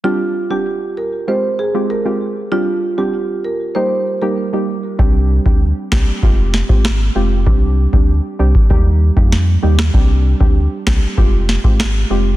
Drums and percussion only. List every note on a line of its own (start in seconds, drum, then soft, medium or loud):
4.99 kick loud
5.46 kick medium
5.92 kick medium
5.92 cross-stick medium
5.92 snare loud
6.23 kick medium
6.54 snare medium
6.69 kick loud
6.85 cross-stick medium
6.85 snare loud
7.47 kick loud
7.93 kick loud
8.55 kick medium
8.70 kick medium
9.17 kick loud
9.32 snare medium
9.79 cross-stick medium
9.79 snare loud
9.94 kick loud
10.41 kick medium
10.87 kick medium
10.87 cross-stick medium
10.87 snare loud
11.18 kick medium
11.49 snare medium
11.64 kick loud
11.80 cross-stick medium
11.80 snare loud